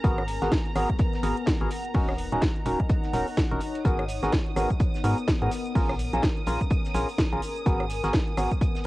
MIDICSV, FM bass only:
0, 0, Header, 1, 2, 480
1, 0, Start_track
1, 0, Key_signature, 5, "minor"
1, 0, Tempo, 476190
1, 40, Time_signature, 4, 2, 24, 8
1, 8937, End_track
2, 0, Start_track
2, 0, Title_t, "FM bass"
2, 0, Program_c, 0, 39
2, 40, Note_on_c, 0, 32, 100
2, 394, Note_off_c, 0, 32, 0
2, 422, Note_on_c, 0, 32, 97
2, 494, Note_off_c, 0, 32, 0
2, 761, Note_on_c, 0, 32, 104
2, 864, Note_off_c, 0, 32, 0
2, 1240, Note_on_c, 0, 32, 102
2, 1344, Note_off_c, 0, 32, 0
2, 1622, Note_on_c, 0, 32, 102
2, 1689, Note_off_c, 0, 32, 0
2, 1960, Note_on_c, 0, 27, 102
2, 2313, Note_off_c, 0, 27, 0
2, 2342, Note_on_c, 0, 27, 100
2, 2414, Note_off_c, 0, 27, 0
2, 2681, Note_on_c, 0, 27, 103
2, 2784, Note_off_c, 0, 27, 0
2, 3161, Note_on_c, 0, 27, 102
2, 3264, Note_off_c, 0, 27, 0
2, 3542, Note_on_c, 0, 27, 99
2, 3614, Note_off_c, 0, 27, 0
2, 3881, Note_on_c, 0, 32, 98
2, 4234, Note_off_c, 0, 32, 0
2, 4262, Note_on_c, 0, 32, 100
2, 4334, Note_off_c, 0, 32, 0
2, 4601, Note_on_c, 0, 32, 106
2, 4705, Note_off_c, 0, 32, 0
2, 5081, Note_on_c, 0, 44, 101
2, 5184, Note_off_c, 0, 44, 0
2, 5462, Note_on_c, 0, 44, 100
2, 5529, Note_off_c, 0, 44, 0
2, 5801, Note_on_c, 0, 34, 103
2, 6154, Note_off_c, 0, 34, 0
2, 6182, Note_on_c, 0, 34, 98
2, 6254, Note_off_c, 0, 34, 0
2, 6520, Note_on_c, 0, 34, 103
2, 6624, Note_off_c, 0, 34, 0
2, 7000, Note_on_c, 0, 34, 103
2, 7104, Note_off_c, 0, 34, 0
2, 7382, Note_on_c, 0, 34, 100
2, 7449, Note_off_c, 0, 34, 0
2, 7720, Note_on_c, 0, 32, 99
2, 8073, Note_off_c, 0, 32, 0
2, 8102, Note_on_c, 0, 32, 97
2, 8174, Note_off_c, 0, 32, 0
2, 8440, Note_on_c, 0, 32, 102
2, 8544, Note_off_c, 0, 32, 0
2, 8937, End_track
0, 0, End_of_file